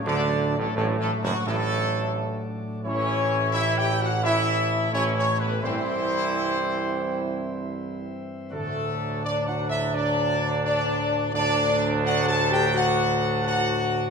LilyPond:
<<
  \new Staff \with { instrumentName = "Trumpet section" } { \time 4/4 \key d \major \tempo 4 = 85 d''8. a'16 \tuplet 3/2 { a'8 a'8 fis'8 } a'4. r8 | cis''4 \tuplet 3/2 { e''8 g''8 fis''8 } e''4 \tuplet 3/2 { cis''8 cis''8 b'8 } | c''2.~ c''8 r8 | a'4 \tuplet 3/2 { d''8 fis''8 e''8 } d''4 d''4 |
d''4 \tuplet 3/2 { fis''8 a''8 g''8 } fis''4 fis''4 | }
  \new Staff \with { instrumentName = "French horn section" } { \time 4/4 \key d \major d'8. a16 \tuplet 3/2 { a8 a8 fis8 } a4. r8 | cis'4 \tuplet 3/2 { e'8 g'8 fis'8 } e'4 \tuplet 3/2 { cis'8 cis'8 b8 } | c'2.~ c'8 r8 | a4 \tuplet 3/2 { d'8 fis'8 e'8 } d'4 d'4 |
d'4 \tuplet 3/2 { fis'8 a'8 g'8 } fis'4 fis'4 | }
  \new Staff \with { instrumentName = "Pipe organ" } { \clef bass \time 4/4 \key d \major << { <fis d'>1 | <e e'>1~ | <e e'>1 | <d fis'>1 |
<d fis'>1 | } \\ { <a, a>1~ | <a, a>1 | <g, c'>1 | <a, d'>1 |
<a, d'>1 | } >> }
  \new Staff \with { instrumentName = "Trombone section" } { \clef bass \time 4/4 \key d \major d8. a,16 \tuplet 3/2 { a,8 a,8 fis,8 } a,4. r8 | <e e'>4 <e e'>4 <e e'>4 <e e'>4 | <e e'>2.~ <e e'>8 r8 | <fis d'>1 |
<fis d'>1 | }
  \new Staff \with { instrumentName = "Tuba" } { \clef bass \time 4/4 \key d \major d,8. a,,16 \tuplet 3/2 { a,,8 a,,8 fis,,8 } a,,4. r8 | a,,2. a,,4 | c,2.~ c,8 r8 | d,1 |
d,1 | }
>>